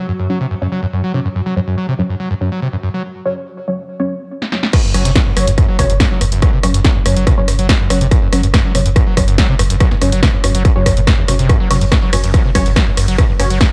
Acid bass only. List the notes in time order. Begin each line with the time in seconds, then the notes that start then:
0.09 F#2
0.19 F#2
0.30 F#3
0.41 C3
0.51 F#2
0.62 F#2
0.72 F#3
0.83 F#2
0.93 F#2
1.04 F#3
1.14 C3
1.25 F#2
1.35 F#2
1.46 F#3
1.56 F#2
1.67 F#2
1.78 F#3
1.88 C3
1.99 F#2
2.10 F#2
2.20 F#3
2.31 F#2
2.41 F#2
2.52 F#3
2.62 C3
2.73 F#2
2.83 F#2
2.94 F#3
4.73 F#2
4.84 F#2
4.94 F#3
5.05 C3
5.16 F#2
5.26 F#2
5.37 F#3
5.47 F#2
5.58 F#2
5.69 F#3
5.79 C3
5.90 F#2
6.00 F#2
6.11 F#3
6.21 F#2
6.32 F#2
6.42 F#3
6.53 C3
6.63 F#2
6.74 F#2
6.85 F#3
6.95 F#2
7.06 F#2
7.17 F#3
7.27 C3
7.38 F#2
7.48 F#2
7.59 F#3
7.69 F#2
7.80 F#2
7.90 F#3
8.01 C3
8.11 F#2
8.22 F#2
8.33 F#3
8.43 F#2
8.54 F#2
8.65 F#3
8.75 C3
8.86 F#2
8.96 F#2
9.07 F#3
9.17 F#2
9.28 F#2
9.38 F#3
9.49 C3
9.59 F#2
9.70 F#2
9.80 F#3
9.91 F#2
10.02 F#2
10.12 F#3
10.23 C3
10.34 F#2
10.44 F#2
10.55 F#3
10.65 F#2
10.76 F#2
10.86 G2
10.97 A2
11.07 F#2
11.18 E2
11.28 C3
11.39 C3
11.49 F#2
11.60 F#3
11.71 C3
11.81 F#2
11.92 F#2
12.03 F#3
12.13 F#2
12.24 F#2
12.34 F#3
12.45 C3
12.55 F#2
12.66 F#2
12.76 F#3
12.87 F#2
12.97 F#2
13.08 F#3
13.18 C3
13.29 F#2
13.40 F#2
13.50 F#3
13.61 F#2